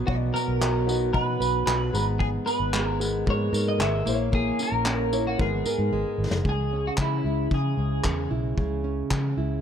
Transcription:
Already playing: F#3 B3 D#4 F#4 D#5
0.06 B1 B2 B3 F#4 D5, kick
0.15 D#5
0.34 B3 A#4, tambourine
0.48 B1
0.61 F#3, clap
0.87 B3 D#4 F#4 D#5, tambourine
1.13 B2 B3 F#4 B4 D#5, kick
1.40 B1 B4, tambourine
1.66 B1 F#3 B4, clap
1.93 G#1 G#2 G#3 B3 A#5, tambourine
2.19 G#2 G#4, kick
2.46 B3 B4, tambourine
2.60 G#1
2.74 G#3, clap
2.83 A#4
2.99 G#3 B3 A#4, tambourine
3.26 G#2 G#3 A#3 A#4, kick
3.30 B3 C#5
3.53 G#2 A#4, tambourine
3.69 D#5
3.78 G#1 G#3 E5, clap
4.05 A#1 A#3 E4 C5, tambourine
4.14 C#5
4.32 A#3 G#4, kick
4.59 C#4 A#4, tambourine
4.72 A#1
4.86 C#4, clap
5.11 A#3 E4 C#5, tambourine
5.27 F#4
5.38 G#1 G#2 G#3 B3 G#4 A#4, kick
5.65 A#4, muted fingered electric bass stroke, tambourine
5.78 G#2
5.92 G#1 G#3
6.18 G#1
6.31 F#1, snare
6.45 C#2 C#3 G#4, kick
6.73 C#4
6.87 F#4
6.98 C#3 G#3 E4, kick, clap
7.24 C#2 E4
7.51 C#3 G#4, kick
7.77 C#2 C#4
8.04 E2 G#3, kick, clap
8.31 B1 E4
8.58 C#2 C#3 G#4, kick
8.84 C#4
9.11 C#3 G#3, kick, clap
9.37 C#2 E4

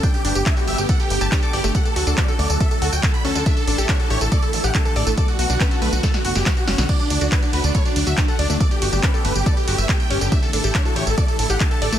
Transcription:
0.03 D3 A3 B3 D4 G4 G5, kick, closed hi-hat, tambourine
0.14 G4, closed hi-hat, tambourine
0.25 G1 D4 G4, open hi-hat
0.35 G1 G4, closed hi-hat, tambourine
0.46 D4 E5, kick, clap, closed hi-hat, tambourine
0.57 F#4 G4, closed hi-hat, tambourine
0.67 G1 G4 E5, open hi-hat
0.78 G1 G4, closed hi-hat, tambourine
0.89 A4 F#5, kick, closed hi-hat, tambourine
1.00 G4, closed hi-hat, tambourine
1.10 G1 G4, open hi-hat
1.21 G1 G4 A5, closed hi-hat, tambourine
1.32 D4 G4, kick, clap, closed hi-hat, tambourine
1.43 A4 D6, closed hi-hat, tambourine
1.53 G1 G4 D5, open hi-hat
1.64 G1 A3 G4, closed hi-hat, tambourine
1.75 F#3 A3 F#4 A4 F#5, kick, closed hi-hat, tambourine
1.85 A4, closed hi-hat, tambourine
1.96 D2 F#4 A4, open hi-hat
2.07 D2 D4 A4, closed hi-hat, tambourine
2.17 C#4 D5, kick, clap, closed hi-hat, tambourine
2.28 A4, closed hi-hat, tambourine
2.39 D2 A3 D5, open hi-hat
2.50 D2 A4, closed hi-hat, tambourine
2.60 A4 E5, kick, closed hi-hat, tambourine
2.71 A4, closed hi-hat, tambourine
2.82 D2 F#4 A4, open hi-hat
2.92 D2 G5, tambourine
3.03 A4, kick, clap, closed hi-hat, tambourine
3.14 B5, closed hi-hat, tambourine
3.25 D2 C#4 A4, open hi-hat
3.35 D2 D3 A4, closed hi-hat, tambourine
3.46 D3 E3 D4 E4 E5, kick, closed hi-hat, tambourine
3.57 A4, closed hi-hat, tambourine
3.67 A1 D4 A4, open hi-hat
3.78 A1 G4 A4, closed hi-hat, tambourine
3.89 D4 C#5, kick, clap, closed hi-hat, tambourine
4.00 F#4 A4, closed hi-hat, tambourine
4.10 A1 G4 C#5, open hi-hat
4.21 A1 A4, closed hi-hat, tambourine
4.32 A4 D5, kick, closed hi-hat, tambourine
4.42 A4, closed hi-hat, tambourine
4.53 A1 A4, open hi-hat
4.64 A1 G4 F#5, closed hi-hat, tambourine
4.75 D4 A4, kick, clap, closed hi-hat, tambourine
4.85 A4 A5, closed hi-hat, tambourine
4.96 A1 A4 D5, open hi-hat
5.07 A1 A3 A4, closed hi-hat, tambourine
5.17 D3 B3 F#4 A4 D5, kick, closed hi-hat, tambourine
5.28 F#4, closed hi-hat, tambourine
5.39 B1 F#4, open hi-hat
5.50 B1 D4 F#4, closed hi-hat, tambourine
5.60 C#4 B4, kick, clap, closed hi-hat, tambourine
5.71 F#4 A4, closed hi-hat, tambourine
5.82 B1 A3 B4, open hi-hat
5.93 B1 F#4, closed hi-hat, tambourine
6.03 A4, kick, snare, closed hi-hat, tambourine
6.14 F#4, snare, closed hi-hat, tambourine
6.25 F#1 F#4, open hi-hat
6.35 F#1 G4, snare, closed hi-hat, tambourine
6.46 F#4, kick, snare, clap, closed hi-hat, tambourine
6.57 F#4, closed hi-hat, tambourine
6.68 F#1 C#4 F#4, snare, open hi-hat
6.78 B1 D3 F#4, snare, tambourine
6.89 D3 F#3 A3 D4 F#4 D5, kick, closed hi-hat, tambourine, crash
7.00 D4, closed hi-hat, tambourine
7.10 D2 D4, open hi-hat, ride
7.21 D2 D4 F#4, closed hi-hat, tambourine
7.32 D4 B4, kick, clap, closed hi-hat, tambourine
7.43 D4 F#4, closed hi-hat, tambourine
7.53 D2 F#4 B4, open hi-hat, ride
7.64 D2 D4, closed hi-hat, tambourine
7.75 A4 C#5, kick, closed hi-hat, tambourine
7.85 D4, closed hi-hat, tambourine
7.96 D2 D4, open hi-hat, ride
8.07 D2 F#4 E5, closed hi-hat, tambourine
8.18 D4, kick, clap, closed hi-hat, tambourine
8.28 A4 F#5, closed hi-hat, tambourine
8.39 D2 D4 D5, open hi-hat, ride
8.50 D2 A3 D4, closed hi-hat, tambourine
8.60 B3 G4 A4 D5, kick, closed hi-hat, tambourine
8.71 G4, closed hi-hat, tambourine
8.82 G1 F#4 G4, open hi-hat, ride
8.92 G1 D4 G4, closed hi-hat, tambourine
9.03 C#4 B4, kick, clap, closed hi-hat, tambourine
9.14 G4 A4, closed hi-hat, tambourine
9.25 G1 A3 B4, open hi-hat, ride
9.35 G1 G4, closed hi-hat, tambourine
9.46 A4 D5, kick, closed hi-hat, tambourine
9.57 G4, closed hi-hat, tambourine
9.67 G1 F#4 G4, open hi-hat, ride
9.78 G1 E5, closed hi-hat, tambourine
9.89 G4, kick, clap, closed hi-hat, tambourine
10.00 G5, closed hi-hat, tambourine
10.10 G1 C#4 G4, open hi-hat, ride
10.21 G1 D3 G4, closed hi-hat, tambourine
10.32 E3 D4 E4 E5, kick, closed hi-hat, tambourine
10.43 A4, closed hi-hat, tambourine
10.53 A1 D4 A4, open hi-hat, ride
10.64 A1 G4 A4, closed hi-hat, tambourine
10.75 D4 C#5, kick, clap, closed hi-hat
10.85 F#4 A4, closed hi-hat, tambourine
10.96 A1 G4 C#5, open hi-hat, ride
11.07 A1 A4, closed hi-hat, tambourine
11.17 A4 D5, kick, closed hi-hat, tambourine
11.28 A4, closed hi-hat, tambourine
11.39 A1 A4, open hi-hat, ride
11.50 A1 G4 F#5, closed hi-hat, tambourine
11.60 D4 A4, kick, clap, closed hi-hat, tambourine
11.71 A4 A5, closed hi-hat, tambourine
11.82 A1 A4 D5, open hi-hat, ride
11.92 A1 A3 A4, closed hi-hat, tambourine

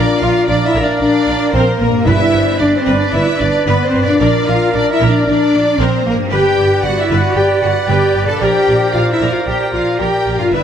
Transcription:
Already playing: A#2 D4 F4 A#4 D5 F5
0.20 A#1 F4 A#4 F5
0.47 A#1 D4 F4 D5
0.65 E4 E5
0.74 A#1 A#4
0.83 D4 D5
1.00 A#1 D4 A#4 D5
1.27 A#1 F4
1.53 A#1 C4 A#4 C5
1.79 A#1 A#3 A#4
1.89 G2
1.93 D4
1.98 G4
2.03 G1 B4 D5 E5
2.07 G2 E4 B4 D5 E5
2.33 G1 B4 C5
2.59 G1 D4 G4 D5
2.78 C4 C5
2.86 G1 B4
2.95 D4 D5
3.13 G1 E4 B4 E5
3.40 G1 D4 G4 D5
3.67 G1 B3 B4
3.84 C4 C5
3.89 C4
3.94 G1 B4
4.03 A#2 D4 D5
4.07 D4
4.12 F4
4.17 A#1 A#4 D5
4.21 D4 A#4 D5
4.46 A#1 F4 A#4 F5
4.73 A#1 D4 F4 D5
4.91 E4 E5
5.01 A#1 A#4
5.08 D4 D5
5.26 A#1 D4 A#4 D5
5.31 D5
5.53 A#1 F4
5.78 A#1 C4 A#4 C5
6.05 A#1 A#3 A#4
6.13 G2
6.18 D4
6.22 G4
6.27 B4
6.31 G1 G4 B4 D5 G5
6.58 G1 B4
6.84 G1 F#4 G4 D5 F#5
6.99 E4 E5
7.06 G1 E4
7.11 B4
7.18 F#4 F#5
7.36 G1 G4 B4 G5
7.61 G1 F#4 G4 F#5
7.87 G1 G4 B4 G5
8.15 G1 B4
8.23 A#2
8.27 D4 A4 A5
8.32 F4
8.37 A#4 G5
8.41 A#1 G4 A#4 C5 G5
8.68 A#1 A#4
8.93 A#1 F4 F5
9.12 E4 E5
9.20 A#1 A#4
9.28 F4 F5
9.32 F4
9.46 A#1 G4 A#4 G5
9.73 A#1 F4 F5
9.99 A#1 G4 A#4 G5
10.26 A#1 A#4
10.34 G2 F5
10.39 D4 F4 F5
10.44 G4
10.48 G1 B4 D5 E5
10.52 E4 B4 D5 E5

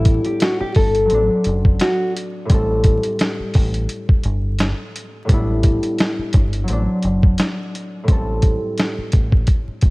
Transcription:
Already playing: A1 A2 G3 B3 D4 E4
0.05 kick, closed hi-hat
0.25 G4, closed hi-hat
0.40 F#4, snare, closed hi-hat
0.60 G4, muted fingered electric bass stroke
0.75 G1 A4, kick, open hi-hat
0.95 closed hi-hat
1.06 F#3
1.10 A1 C4, closed hi-hat
1.14 D4
1.31 muted fingered electric bass stroke
1.44 F#1, closed hi-hat
1.65 kick
1.79 F#4, snare, closed hi-hat
2.17 closed hi-hat
2.45 A2 G3
2.50 A1 C4, kick, closed hi-hat
2.54 A4
2.84 kick, closed hi-hat
3.03 closed hi-hat
3.19 snare, closed hi-hat
3.40 muted fingered electric bass stroke
3.54 A1, kick, open hi-hat
3.74 closed hi-hat
3.89 closed hi-hat
4.09 muted fingered electric bass stroke, kick
4.24 G1, closed hi-hat
4.59 snare, closed hi-hat
4.96 closed hi-hat
5.25 A2 G3
5.29 A1 B3 D4, kick, closed hi-hat
5.33 E4
5.63 kick, closed hi-hat
5.83 closed hi-hat
5.98 snare, closed hi-hat
6.19 muted fingered electric bass stroke
6.33 G1, kick, closed hi-hat
6.53 closed hi-hat
6.64 F#3
6.68 A1 C4, closed hi-hat
6.72 D4
6.89 muted fingered electric bass stroke
7.02 F#1, closed hi-hat
7.23 kick
7.38 snare, closed hi-hat
7.75 closed hi-hat
8.03 A2 G3
8.08 A1 C4 A4, kick, closed hi-hat
8.42 kick, closed hi-hat
8.78 snare, closed hi-hat
8.98 muted fingered electric bass stroke
9.12 A1, kick, closed hi-hat
9.32 kick
9.47 kick, closed hi-hat
9.68 muted fingered electric bass stroke
9.81 G1, kick, closed hi-hat

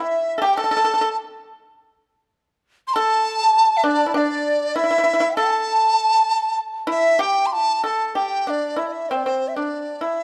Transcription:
0.00 E4 E5
0.38 G4 A4 A5
0.45 G5
0.56 A4 A5
0.62 A4 A5
0.71 A4
0.77 A4
0.84 A4
0.94 A4
1.01 A4
2.87 C6
2.94 A4 A5
3.50 G4
3.77 E5
3.84 D4 D5
4.06 E4
4.14 D4 D5
4.75 E4 E5
4.84 E4
4.91 E4
4.98 E4
5.04 E4
5.13 E4
5.20 E4
5.36 A4 A5
6.87 E4
6.91 E5
7.19 G4 G5
7.46 C6
7.53 A5
7.60 E4
7.84 A4 A5
8.08 A5
8.15 G4 G5
8.47 D4 D5
8.76 E4 E5
8.87 D5
8.92 E5
9.10 C4 C5
9.16 D5
9.24 C4 C5
9.48 E5
9.55 D4 D5
10.01 E4 E5

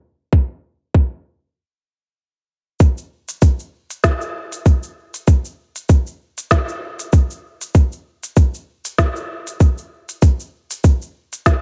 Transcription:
0.33 kick
0.95 kick
2.80 kick, open hi-hat, shaker
2.98 shaker
3.29 open hi-hat, shaker
3.42 kick, open hi-hat, shaker
3.60 shaker
3.90 open hi-hat, shaker
4.04 kick, snare, open hi-hat, shaker
4.21 shaker
4.52 open hi-hat, shaker
4.66 kick, open hi-hat, shaker
4.83 shaker
5.14 open hi-hat, shaker
5.27 kick, open hi-hat, shaker
5.45 shaker
5.76 open hi-hat, shaker
5.89 kick, open hi-hat, shaker
6.07 shaker
6.38 open hi-hat, shaker
6.51 kick, snare, open hi-hat, shaker
6.69 shaker
6.99 open hi-hat, shaker
7.13 kick, open hi-hat, shaker
7.31 shaker
7.61 open hi-hat, shaker
7.75 kick, open hi-hat, shaker
7.92 shaker
8.23 open hi-hat, shaker
8.37 kick, open hi-hat, shaker
8.54 shaker
8.85 open hi-hat, shaker
8.98 kick, snare, open hi-hat, shaker
9.16 shaker
9.47 open hi-hat, shaker
9.60 kick, open hi-hat, shaker
9.78 shaker
10.09 open hi-hat, shaker
10.22 kick, open hi-hat, shaker
10.40 shaker
10.71 open hi-hat, shaker
10.84 kick, open hi-hat, shaker
11.02 shaker
11.33 open hi-hat, shaker
11.46 kick, snare, open hi-hat, shaker

